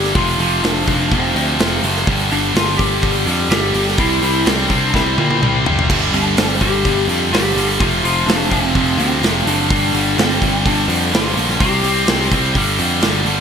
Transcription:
Already playing: picked electric bass G1, distorted electric guitar G2 D3 G3, lead electric guitar G4
0.04 snare
0.14 picked electric bass F1, distorted electric guitar F2 C3 F3, lead electric guitar F4, kick, open hi-hat
0.38 picked electric bass F1, distorted electric guitar F2 C3 F3, lead electric guitar F4, open hi-hat
0.62 picked electric bass F1, distorted electric guitar F2 C3 F3, lead electric guitar D4, snare, open hi-hat
0.86 picked electric bass F1, distorted electric guitar F2 C3 F3, lead electric guitar D4, kick, open hi-hat
1.11 picked electric bass F1, distorted electric guitar F2 C3 F3, lead electric guitar C4, kick, open hi-hat
1.35 picked electric bass D2, distorted electric guitar F2 C3 F3, open hi-hat
1.59 picked electric bass F1, distorted electric guitar F2 C3 F3, snare, open hi-hat
1.83 picked electric bass F#1, distorted electric guitar F2 C3 F3, open hi-hat
1.97 snare
2.07 picked electric bass G1, distorted electric guitar G2 D3 G3, kick, open hi-hat
2.31 picked electric bass G1, distorted electric guitar G2 D3 G3, lead electric guitar D4, open hi-hat
2.54 picked electric bass G1, distorted electric guitar G2 D3 G3, lead electric guitar F4, snare, open hi-hat
2.69 snare
2.77 picked electric bass G1, distorted electric guitar G2 D3 G3, lead electric guitar G4, kick, open hi-hat
3.02 picked electric bass G1, distorted electric guitar G2 D3 G3, kick, open hi-hat
3.26 picked electric bass F2, distorted electric guitar G2 D3 G3, open hi-hat
3.50 picked electric bass G1, distorted electric guitar G2 D3 G3, lead electric guitar G4, snare, open hi-hat
3.73 picked electric bass G1, distorted electric guitar G2 D3 G3, open hi-hat
3.88 snare
3.97 picked electric bass C2, distorted electric guitar C3 G3 C4, lead electric guitar E4, kick, open hi-hat
4.21 picked electric bass C2, distorted electric guitar C3 G3 C4, lead electric guitar E4, open hi-hat
4.45 picked electric bass C2, distorted electric guitar C3 G3 C4, lead electric guitar D4, snare, open hi-hat
4.69 picked electric bass C2, distorted electric guitar C3 G3 C4, kick, open hi-hat
4.93 picked electric bass C2, distorted electric guitar C3 G3 C4, lead electric guitar E4, kick, snare
5.17 picked electric bass A#2, distorted electric guitar C3 G3 C4, high tom
5.31 high tom
5.41 picked electric bass C2, distorted electric guitar C3 G3 C4, mid tom
5.65 picked electric bass F#1, distorted electric guitar C3 G3 C4, floor tom
5.79 floor tom
5.89 picked electric bass G1, distorted electric guitar G2 D3 G3, kick, crash
6.13 picked electric bass G1, distorted electric guitar G2 D3 G3, lead electric guitar D4, open hi-hat
6.37 picked electric bass G1, distorted electric guitar G2 D3 G3, snare, open hi-hat
6.60 picked electric bass G1, distorted electric guitar G2 D3 G3, lead electric guitar G4, kick, open hi-hat
6.85 picked electric bass G1, distorted electric guitar G2 D3 G3, kick, open hi-hat
7.08 picked electric bass F2, distorted electric guitar G2 D3 G3, open hi-hat
7.31 picked electric bass G1, distorted electric guitar G2 D3 G3, lead electric guitar G4, snare, open hi-hat
7.55 picked electric bass G1, distorted electric guitar G2 D3 G3, open hi-hat
7.80 picked electric bass F1, distorted electric guitar F2 C3 F3, lead electric guitar F4, kick, open hi-hat
8.03 picked electric bass F1, distorted electric guitar F2 C3 F3, lead electric guitar F4, open hi-hat
8.26 picked electric bass F1, distorted electric guitar F2 C3 F3, lead electric guitar D4, snare, open hi-hat
8.41 snare
8.50 picked electric bass F1, distorted electric guitar F2 C3 F3, lead electric guitar C4, kick, open hi-hat
8.75 picked electric bass F1, distorted electric guitar F2 C3 F3, kick, open hi-hat
8.97 picked electric bass D2, distorted electric guitar F2 C3 F3, lead electric guitar C4, open hi-hat
9.22 picked electric bass F1, distorted electric guitar F2 C3 F3, snare, open hi-hat
9.45 picked electric bass F#1, distorted electric guitar F2 C3 F3, lead electric guitar D4, open hi-hat
9.70 picked electric bass G1, distorted electric guitar G2 D3 G3, lead electric guitar D4, kick, open hi-hat
9.93 picked electric bass G1, distorted electric guitar G2 D3 G3, open hi-hat
10.17 picked electric bass G1, distorted electric guitar G2 D3 G3, lead electric guitar C4, snare, open hi-hat
10.41 picked electric bass G1, distorted electric guitar G2 D3 G3, kick, open hi-hat
10.66 picked electric bass G1, distorted electric guitar G2 D3 G3, lead electric guitar D4, kick, open hi-hat
10.88 picked electric bass F2, distorted electric guitar G2 D3 G3, open hi-hat
11.12 picked electric bass G1, distorted electric guitar G2 D3 G3, lead electric guitar F4, snare, open hi-hat
11.35 picked electric bass A#1, distorted electric guitar G2 D3 G3, open hi-hat
11.50 snare
11.60 picked electric bass C2, distorted electric guitar C3 G3 C4, lead electric guitar G4, kick, open hi-hat
11.83 picked electric bass C2, distorted electric guitar C3 G3 C4, open hi-hat
12.07 picked electric bass C2, distorted electric guitar C3 G3 C4, snare, open hi-hat
12.21 snare
12.31 picked electric bass C2, distorted electric guitar C3 G3 C4, kick, open hi-hat
12.55 picked electric bass G1, distorted electric guitar G2 D3 G3, kick, open hi-hat
12.79 picked electric bass F2, distorted electric guitar G2 D3 G3, open hi-hat
13.02 picked electric bass G1, distorted electric guitar G2 D3 G3, snare, open hi-hat
13.26 picked electric bass G1, distorted electric guitar G2 D3 G3, open hi-hat

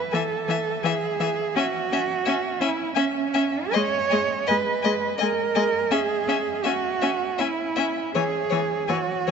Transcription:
Already playing: cello B4
0.12 viola E3, cello A4, violin E5 G#5
0.48 viola E3, violin E5 G#5
0.83 viola E3, cello G#4, violin E5 G#5
1.20 viola E3, violin E5 G#5
1.56 viola C#4, cello F#4, violin E5 G#5
1.92 viola C#4, violin E5 G#5
2.26 viola C#4, violin E5 G#5
2.61 viola C#4, cello E4, violin E5 G#5
2.95 viola C#4, cello C#4, violin E5 G#5
3.34 viola C#4, violin E5 G#5
3.71 cello C#5, violin D#5 G#5
3.75 viola G#3
4.10 viola G#3, violin D#5 G#5
4.47 viola G#3, cello B4, violin D#5 G#5
4.82 viola G#3, violin D#5 G#5
5.18 viola G#3, cello A#4, violin D#5 G#5
5.55 viola G#3, violin D#5 G#5
5.91 viola C#4, cello G#4, violin E5 G#5
6.28 viola C#4, violin E5 G#5
6.64 viola C#4, cello F#4, violin E5 G#5
7.01 viola C#4, violin E5 G#5
7.38 viola C#4, cello E4, violin E5 G#5
7.76 viola C#4, violin E5 G#5
8.15 viola E3, cello G#4, violin C#5 G#5
8.50 viola E3, violin C#5 G#5
8.88 viola E3, cello F#4, violin C#5 G#5
9.27 viola E3, violin C#5 G#5

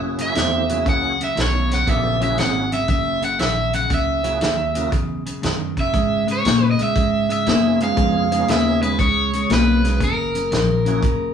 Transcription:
Already playing: clean electric guitar F#2 C#3, upright bass F#2, tonewheel organ A#3 C#4 E4 F#4 G#4
0.18 clean electric guitar F#2 C#3, closed hi-hat
0.22 overdriven electric guitar E5
0.34 upright bass E2, clean electric guitar F#2 D#3, tonewheel organ A3 C4 D#4 F4 G4, snare, closed hi-hat
0.69 clean electric guitar F#2 C#3, tonewheel organ A#3 C#4 E4 F#4 G#4, closed hi-hat
0.85 upright bass C#2, clean electric guitar F#2 C#3, kick, closed hi-hat
0.89 overdriven electric guitar F#5
1.20 clean electric guitar F#2 C#3, closed hi-hat
1.24 overdriven electric guitar E5
1.35 upright bass B1, clean electric guitar F#2 D#3, snare, closed hi-hat
1.41 overdriven electric guitar C#5
1.68 clean electric guitar F#2 C#3, closed hi-hat
1.73 overdriven electric guitar F#5, snare
1.86 upright bass A#1, clean electric guitar F#2 C#3, tonewheel organ B3 D4 F4 G4 A4, overdriven electric guitar E5, kick, closed hi-hat
2.20 clean electric guitar F#2 C#3, tonewheel organ A#3 C#4 E4 F#4 G#4, overdriven electric guitar E5, closed hi-hat
2.38 upright bass G#1, clean electric guitar F#2 D#3, overdriven electric guitar F#5, snare, closed hi-hat
2.71 clean electric guitar F#2 C#3, overdriven electric guitar E5, closed hi-hat
2.88 upright bass F#1, clean electric guitar F#2 C#3, overdriven electric guitar E5, kick, closed hi-hat
3.22 clean electric guitar F#2 C#3, overdriven electric guitar F#5, closed hi-hat
3.39 upright bass A#1, clean electric guitar F#2 D#3, overdriven electric guitar E5, snare, closed hi-hat
3.73 clean electric guitar F#2 C#3, overdriven electric guitar F#5, closed hi-hat
3.90 upright bass C#2, clean electric guitar F#2 C#3, kick, closed hi-hat
3.94 overdriven electric guitar E5
4.23 clean electric guitar F#2 C#3, tonewheel organ A#3 C#4 E4 F#4 G#4, closed hi-hat
4.40 upright bass D#2, clean electric guitar F#2 D#3, snare, closed hi-hat
4.74 clean electric guitar F#2 C#3, tonewheel organ A#3 C#4 E4 F#4 A#4, closed hi-hat
4.91 upright bass E2, clean electric guitar F#2 C#3, kick, closed hi-hat
5.26 clean electric guitar F#2 C#3, muted upright bass stroke, closed hi-hat
5.42 clean electric guitar F#2 D#3, upright bass F#2, snare, closed hi-hat
5.77 clean electric guitar F#2 C#3, overdriven electric guitar E5, kick, closed hi-hat
5.93 upright bass G#2, clean electric guitar C#3 G#3, kick, closed hi-hat
6.27 clean electric guitar C#3 G#3, closed hi-hat
6.32 overdriven electric guitar C#5
6.45 upright bass A#2, clean electric guitar C#3 A#3, snare, closed hi-hat
6.71 overdriven electric guitar D#5
6.78 clean electric guitar C#3 G#3, muted upright bass stroke, closed hi-hat
6.83 overdriven electric guitar E5
6.95 upright bass G#2, clean electric guitar C#3 G#3, kick, closed hi-hat
7.29 clean electric guitar C#3 G#3, overdriven electric guitar E5, closed hi-hat
7.46 upright bass F#2, clean electric guitar C#3 A#3, tonewheel organ B3 C#4 D#4 F4 G#4, snare, closed hi-hat
7.80 clean electric guitar C#3 G#3, overdriven electric guitar F5, closed hi-hat
7.97 upright bass F2, clean electric guitar C#3 G#3, kick, closed hi-hat
8.31 clean electric guitar C#3 G#3, tonewheel organ B3 C#4 D#4 F4 G#4, closed hi-hat
8.48 upright bass D#2, clean electric guitar C#3 A#3, overdriven electric guitar E5, snare, closed hi-hat
8.82 clean electric guitar C#3 G#3, overdriven electric guitar B4, closed hi-hat
8.99 upright bass C#2, clean electric guitar C#3 G#3, overdriven electric guitar C#5, kick, closed hi-hat
9.33 clean electric guitar C#3 G#3, closed hi-hat
9.49 upright bass B1, clean electric guitar C#3 A#3, overdriven electric guitar B4, snare, closed hi-hat
9.84 clean electric guitar C#3 G#3, snare, closed hi-hat
10.00 upright bass F#1, clean electric guitar F#2 C#3, overdriven electric guitar A#4, kick, closed hi-hat
10.35 clean electric guitar F#2 C#3, closed hi-hat
10.51 upright bass A#1, clean electric guitar F#2 D#3, snare, closed hi-hat
10.85 clean electric guitar F#2 C#3, tonewheel organ A#3 C#4 E4 F#4 G#4, closed hi-hat
11.03 upright bass F#1, clean electric guitar F#2 C#3, kick, closed hi-hat

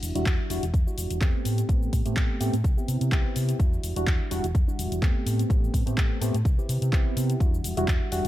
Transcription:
Already playing: reed electric piano G3 D4 E4 F#4
0.03 fingered electric bass E1, open hi-hat, shaker
0.15 fingered electric bass E1, reed electric piano G3 D4 E4 F#4, closed hi-hat, shaker
0.26 fingered electric bass E2, kick, clap, closed hi-hat, shaker
0.50 fingered electric bass E1, reed electric piano G3 D4 E4 F#4, open hi-hat, shaker
0.63 fingered electric bass E1, closed hi-hat, shaker
0.74 fingered electric bass E2, kick, closed hi-hat, shaker
0.86 reed electric piano G3 D4 E4 F#4, shaker
0.98 fingered electric bass E1, open hi-hat, shaker
1.10 fingered electric bass E1, closed hi-hat, shaker
1.21 fingered electric bass E2, reed electric piano A3 B3 C4 G4, kick, clap, closed hi-hat, shaker
1.45 fingered electric bass A2, open hi-hat, shaker
1.58 closed hi-hat, shaker
1.68 fingered electric bass A1, reed electric piano A3 B3 C4 G4, kick, closed hi-hat, shaker
1.83 shaker
1.93 fingered electric bass A2, kick, open hi-hat, shaker
2.05 fingered electric bass A2, reed electric piano A3 B3 C4 G4, closed hi-hat, shaker
2.17 fingered electric bass A1, kick, clap, closed hi-hat, shaker
2.40 fingered electric bass A2, reed electric piano A3 B3 C4 G4, open hi-hat, shaker
2.53 fingered electric bass A2, closed hi-hat, shaker
2.64 fingered electric bass C2, kick, closed hi-hat, shaker
2.77 reed electric piano B3 C4 E4 G4, shaker
2.88 fingered electric bass C3, open hi-hat, shaker
3.01 fingered electric bass C3, closed hi-hat, shaker
3.12 fingered electric bass C2, reed electric piano B3 C4 E4 G4, kick, clap, closed hi-hat, shaker
3.36 fingered electric bass C3, open hi-hat, shaker
3.49 closed hi-hat, shaker
3.59 fingered electric bass E2, reed electric piano G3 D4 E4 F#4, kick, closed hi-hat, shaker
3.73 shaker
3.84 fingered electric bass E1, open hi-hat, shaker
3.96 fingered electric bass E1, reed electric piano G3 D4 E4 F#4, closed hi-hat, shaker
4.07 fingered electric bass E2, kick, clap, closed hi-hat, shaker
4.31 fingered electric bass E1, reed electric piano G3 D4 E4 F#4, open hi-hat, shaker
4.44 fingered electric bass E1, closed hi-hat, shaker
4.55 fingered electric bass E2, kick, closed hi-hat, shaker
4.67 reed electric piano G3 D4 E4 F#4, shaker
4.79 fingered electric bass E1, open hi-hat, shaker
4.92 fingered electric bass E1, closed hi-hat, shaker
5.02 fingered electric bass E2, reed electric piano A3 B3 C4 G4, kick, clap, closed hi-hat, shaker
5.26 fingered electric bass A2, open hi-hat, shaker
5.39 closed hi-hat, shaker
5.49 fingered electric bass A1, reed electric piano A3 B3 C4 G4, kick, closed hi-hat, shaker
5.64 shaker
5.74 fingered electric bass A2, kick, open hi-hat, shaker
5.86 fingered electric bass A2, reed electric piano A3 B3 C4 G4, closed hi-hat, shaker
5.98 fingered electric bass A1, kick, clap, closed hi-hat, shaker
6.21 fingered electric bass A2, reed electric piano A3 B3 C4 G4, open hi-hat, shaker
6.34 fingered electric bass A2, closed hi-hat, shaker
6.45 fingered electric bass C2, kick, closed hi-hat, shaker
6.58 reed electric piano B3 C4 E4 G4, shaker
6.69 fingered electric bass C3, open hi-hat, shaker
6.82 fingered electric bass C3, closed hi-hat, shaker
6.92 fingered electric bass C2, reed electric piano B3 C4 E4 G4, kick, clap, closed hi-hat, shaker
7.17 fingered electric bass C3, open hi-hat, shaker
7.30 closed hi-hat, shaker
7.40 fingered electric bass E2, reed electric piano G3 D4 E4 F#4, kick, closed hi-hat, shaker
7.54 shaker
7.64 fingered electric bass E1, open hi-hat, shaker
7.77 fingered electric bass E1, reed electric piano G3 D4 E4 F#4, closed hi-hat, shaker
7.88 fingered electric bass E2, kick, clap, closed hi-hat, shaker
8.11 fingered electric bass E1, reed electric piano G3 D4 E4 F#4, open hi-hat, shaker
8.25 fingered electric bass E1, closed hi-hat

